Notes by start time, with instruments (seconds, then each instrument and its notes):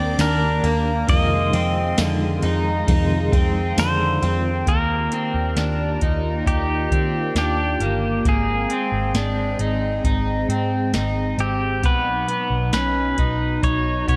Already playing: picked electric bass D#2, clean electric guitar A#3 C4 D4 G4, analog synth pad A#4 G5 D6, pedal steel guitar D5
0.18 picked electric bass D#2, clean electric guitar D#3 A#3 D4, pedal steel guitar A#4, snare, ride, tambourine
0.22 clean electric guitar G4
0.63 picked electric bass D#2, clean electric guitar A#3 D4 G4, ride
0.67 clean electric guitar A#3
1.08 clean electric guitar F2 C3 D#3 G#3 A#3 C4 F4, picked electric bass F2, analog synth pad G#4 F5 C6, pedal steel guitar D#5, kick, ride
1.53 picked electric bass F2, clean electric guitar G#3 C4 F4, ride
1.57 clean electric guitar D#3
1.98 picked electric bass F2, clean electric guitar D3 D#3 G#3 C4 F4, snare, ride, tambourine
2.42 picked electric bass F2, clean electric guitar G#3 C4 D#4 F4, ride
2.47 clean electric guitar D#3
2.87 clean electric guitar F2 C3 D#3 G#3 C4 D#4 F4, picked electric bass F2, analog synth pad A#5, kick, ride
3.32 picked electric bass F2, clean electric guitar D#3 G#3 C4 F4, kick, ride
3.76 picked electric bass F2, clean electric guitar D3 D#3 G#3 C4 F4, pedal steel guitar C5, snare, ride, tambourine
4.21 picked electric bass F2, clean electric guitar G#3 C4 F4, ride
4.25 clean electric guitar D#3
4.66 picked electric bass D#2, analog synth pad D#3 A#3 F4 G4 D5, clean electric guitar A#3, pedal steel guitar A#4, kick, closed hi-hat
5.12 clean electric guitar C4, closed hi-hat
5.34 picked electric bass D#2
5.57 picked electric bass D#2, clean electric guitar D4, snare, closed hi-hat
6.01 picked electric bass D#2, clean electric guitar D#4, kick, closed hi-hat
6.47 picked electric bass D#2, clean electric guitar D#4, pedal steel guitar G4, kick, closed hi-hat
6.91 picked electric bass D#3, clean electric guitar C4, kick, closed hi-hat
7.35 picked electric bass D#2, clean electric guitar D4, pedal steel guitar G4, snare, closed hi-hat
7.80 picked electric bass G1, clean electric guitar A#3, closed hi-hat
8.25 picked electric bass G#1, analog synth pad G#3 C4 G5, clean electric guitar A#3, kick, closed hi-hat
8.29 pedal steel guitar G#4
8.70 clean electric guitar C4, closed hi-hat
8.92 picked electric bass G#1
9.14 picked electric bass G#1, clean electric guitar D4, snare, closed hi-hat
9.59 picked electric bass G#1, clean electric guitar D#4, closed hi-hat
10.04 picked electric bass G#1, clean electric guitar D#4, kick, closed hi-hat
10.49 picked electric bass G#2, clean electric guitar C4, closed hi-hat
10.94 picked electric bass G#1, clean electric guitar D#4, snare, closed hi-hat
11.38 picked electric bass G#1, clean electric guitar C4, pedal steel guitar G4, closed hi-hat
11.83 picked electric bass B1, analog synth pad B2 F#3 D#4, clean electric guitar B3, pedal steel guitar B4, kick, closed hi-hat
12.28 clean electric guitar B3, closed hi-hat
12.50 picked electric bass B1
12.73 picked electric bass B1, clean electric guitar C#4, pedal steel guitar B4, snare, closed hi-hat
13.18 picked electric bass B1, clean electric guitar D#4, kick, closed hi-hat
13.63 picked electric bass B1, clean electric guitar D#4, pedal steel guitar C#5, kick, closed hi-hat
14.08 picked electric bass B2, clean electric guitar B3, pedal steel guitar C#5, kick, closed hi-hat